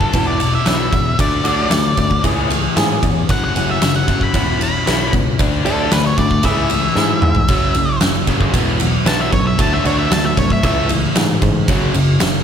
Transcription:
Already playing: F#2 C#3 F#3 A4
0.01 kick
0.13 E1 E2 B2 E3 F#3 B3 E4, kick, ride
0.27 D5
0.40 E2 B2, muted clean electric guitar stroke, ride
0.55 E5
0.66 B1 E2 B2 E3 F#3 B3 E4, snare, ride
0.92 E2 B2, muted clean electric guitar stroke, kick, ride
1.18 D2 D3 A3 D4 D5, muted clean electric guitar stroke, kick, ride
1.44 D2 D3 F#3 A3 D4 F#4, ride
1.70 D2 D3 A3, muted clean electric guitar stroke, snare, ride
1.97 D2 D3 A3, muted clean electric guitar stroke, kick, ride
2.11 kick
2.23 C#2 A2 E3 A3 C#4 G#4, kick, ride
2.50 A2 E3, muted clean electric guitar stroke, ride
2.76 G#2 A2 E3 A3 C#4 G#4, snare, ride
3.02 E2 A2 E3, muted clean electric guitar stroke, kick, ride
3.29 F#1 F#2 C#3 F#3 F#5, muted clean electric guitar stroke, kick, ride
3.44 F#5
3.55 F#1 F#2 C#3 E3 A3 C#4 F#4, ride
3.71 E5
3.81 F#1 F#2 C#3, muted clean electric guitar stroke, snare, ride
3.96 F#5
4.07 F#1 F#2 C#3 F#3, muted clean electric guitar stroke, kick, ride
4.21 B5, kick
4.33 E1 E2 B2 E3 F#3 B3 E4, kick, ride
4.60 E2 B2 B5, muted clean electric guitar stroke, ride
4.86 B1 E2 B2 E3 F#3 B3 E4, snare, ride
5.13 C#2 E2 B2, muted clean electric guitar stroke, kick, ride
5.39 D2 D3 A3 D4, muted clean electric guitar stroke, kick, ride
5.64 D2 D3 F#3 A3 D4 A4, ride
5.91 D2 D3 A3 B4, muted clean electric guitar stroke, snare, ride
6.06 C#5
6.18 D2 D3 A3 D5, muted clean electric guitar stroke, kick, ride
6.31 kick
6.43 C#2 A2 E3 A3 E4 G#4 E5, kick, ride
6.69 A2 E3, muted clean electric guitar stroke, ride
6.95 G#2 A2 E3 A3 E4 G#4, snare
7.21 G#2 A2 E3, muted clean electric guitar stroke, mid tom
7.35 floor tom
7.48 F#1 F#2 C#3 F#3, kick, ride
7.75 F#1 F#2 C#3, ride
8.01 F#1 F#2 C#3, snare, ride
8.27 F#1 F#2 C#3 F#3, kick, ride
8.41 kick
8.54 E1 E2 B2 E3 F#3 B3, kick, ride
8.80 E2 B2 E3 F#3, ride
9.05 B1 E2 B2 E3 F#3 B3 A5, snare, ride
9.21 E5
9.32 B1 E2 B2 E3 F#3 C#5, kick, ride
9.47 E5
9.58 D2 D3 F#3 A3 D4 A5, kick, ride
9.73 E5
9.84 D2 D3 F#3 A3 D4 C#5, ride
9.99 E5
10.10 D2 D3 F#3 A3 A5, snare, ride
10.25 E5
10.37 C2 D3 F#3 A3 C#5, kick, ride
10.50 E5, kick
10.63 C#2 A2 C#3 E3 A3 E5, kick, ride
10.89 A2 C#3 E3, ride
11.16 G#2 A2 C#3 E3, snare, ride
11.41 G#2 A2 C#3 E3, kick, ride
11.68 F#1 F#2 C#3 F#3, kick, ride
11.94 F#1 F#2 C#3, ride
12.20 F#1 F#2 C#3, snare, ride

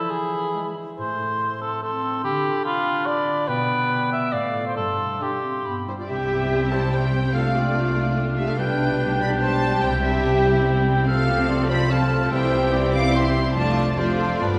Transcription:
Already playing: E3 E4 A4 E5
0.11 G#4 B4 B5
0.33 E4
0.55 G#3 E5
0.76 E4
0.97 A2 A3 C5 C6
1.19 E4
1.40 E5
1.61 C4 A4
1.82 C4 E4 A4 C6
2.03 C4
2.23 D3 D4 G4 B5
2.44 F4
2.64 F4 D5 B5
2.85 B3
3.06 F4 D5 B5
3.27 B3
3.48 B2 B3 B4 G5
3.69 G4
3.90 D5
4.11 B3 E5
4.32 A2 A3 D5 F5
4.54 F4 F5
4.67 C5
4.76 G2 G3 A4 C6
5.21 D4 G4 E5 C6
5.43 C4
5.65 G2 B3 B5
5.87 G3 E4 G4 C5 D5
5.97 F4 D5
6.08 C2 C3 G3 C4 E4 G4 E5 G5
6.30 G4
6.52 C5
6.72 C4 C5 A5
6.93 C5 G5
7.13 C4
7.34 C3 A3 D4 F4 A4 F5
7.54 F4 D5
7.96 A3
8.17 D5
8.37 A3 G4 E5
8.48 A4 F5
8.58 B1 B2 G3 D4 G4 B4 G5
8.79 G4
9.00 D5
9.20 G3 D5 B5
9.41 C5 D5 A5
9.62 G3
9.82 C2 C3 C4 E4 G4 C5 G5
10.02 G4 E5
10.24 C5
10.45 G3
10.65 C5
10.86 G3
11.06 C3 F3 A3 C4 F4 A4 F5
11.27 F4 G4
11.49 F4 C5 D5
11.69 A3 C5 D5 B5
11.90 F4 C5 F5 A5
12.12 A3
12.31 C2 C3 E3 G3 C4 E4 G4 C5 E5 G5
12.53 E4
12.73 C5 D5
12.93 G3 F5 D6
13.15 E4 C5 E5 C6
13.36 G3
13.55 F1 F2 F3 A3 D4 F4 D5 A5
13.77 D4 D5
13.98 F3 A3 D4 F4 G4 A4 C5 D5
14.19 F3 A4
14.40 G1 G2 F3 G3 B3 D4 F4 B4

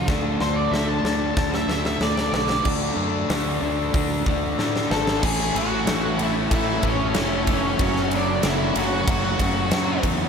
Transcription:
0.06 D2 D3 A3 D4 F#4, kick, snare
0.11 D4
0.40 D2 C5, snare
0.56 D5
0.70 D2 D3 A3 D4 F#4 E5, snare
0.88 A5
1.04 D2 D3 A3 D4 F#4, snare
1.21 muted clean electric guitar stroke
1.36 D2 D3 A3 D4, kick, snare
1.52 A3 D4 F#4 E5, snare
1.67 D2 D3 A3 D4 F#4, snare
1.84 E5, muted clean electric guitar stroke, snare
2.00 D2 D3 A3 D4 F#4 D5, snare
2.17 A3 D4 F#4, snare
2.32 B1 D3 A3 D4 F#4 D5, snare
2.48 A3 D4 F#4, snare
2.65 D2 D3 A3 D4, kick, crash
2.96 F#2 D3 A3 D4
3.29 D2 D3 A3 D4, snare, open hi-hat
3.62 D2 D3 A3 D4
3.94 D2 D3 A3 D4, kick, open hi-hat
4.26 D2 D3 A3 D4, kick
4.58 A2 D3 A3 D4, snare
4.76 snare
4.90 G#1 D3 A3 D4 A4, snare
5.07 snare
5.23 A1 A2 E3 A3 C#4 E4 G#4 E5 C#6, kick, crash
5.40 snare
5.55 A1 A2 E3 A3 F#4, ride
5.87 A1 A2 E3 A3, snare, ride
6.18 A2 E3 A3 C#4 E4, ride
6.23 E4
6.51 A1 A2 E3 A3 E4, kick, ride
6.83 A1 A2 E3 A3, kick, ride
6.88 C#4
7.14 F1 A2 E3 A3 C#4 E4, snare, ride
7.47 A2 E3 A3, kick, ride
7.52 C#4
7.79 F#1 F#2 C#3 F#3 A3 C#4 F#4 F#5, kick, ride
7.83 C#4
7.96 snare
8.11 F#2 C#3 F#3, ride
8.15 D4
8.43 F#1 F#2 C#3 F#3, snare, ride
8.49 E4
8.75 F#1 F#2 C#3 F#3 A3 C#4 F#4, ride
9.07 F#1 F#2 C#3 F#3, kick, ride
9.39 F#1 F#2 C#3 F#3, kick, ride
9.71 F#2 C#3 F#3 A3 C#4 F#4, snare, ride
10.03 E2 F#2 C#3 F#3, kick, ride

